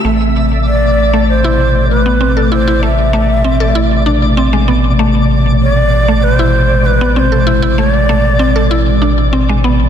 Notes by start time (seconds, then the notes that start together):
0.04 A1 B2 C3 A3 D5
0.67 D5
1.13 A3
1.29 C5
1.44 E4
1.89 B4
2.06 B3
2.21 C4
2.37 A4
2.52 E4 C5
2.68 E4
2.83 A3 E5
3.13 A3
3.44 C4
3.60 A4
3.75 E4
4.06 D4
4.37 C4
4.53 G#3
4.68 B3
4.99 G#3 A3
5.62 C#5
5.73 D5
6.08 A3
6.23 B4
6.34 C5
6.39 E4
6.85 B4
7.01 B3
7.16 C4 C5 D5
7.32 A4
7.47 E4
7.62 E4
7.78 A3 C#5
7.95 D5
8.09 A3
8.39 C4
8.56 A4
8.71 E4
9.02 D4
9.33 C4
9.49 G#3
9.64 B3